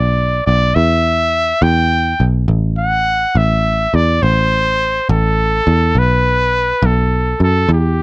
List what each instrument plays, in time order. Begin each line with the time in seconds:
Already playing: picked electric bass B1, trumpet D5
0.46 picked electric bass B1, trumpet D5
0.75 picked electric bass E2, trumpet E5
1.62 picked electric bass E2, trumpet G5
2.20 picked electric bass B1
2.48 picked electric bass A1
2.78 trumpet F#5
3.35 picked electric bass A1, trumpet E5
3.94 picked electric bass E2, trumpet D5
4.22 picked electric bass A1, trumpet C5
5.09 picked electric bass A1, trumpet A4
5.67 picked electric bass E2
5.95 picked electric bass B1, trumpet B4
6.83 picked electric bass B1, trumpet A4
7.40 picked electric bass F#2, trumpet A4
7.69 picked electric bass E2
7.73 trumpet G4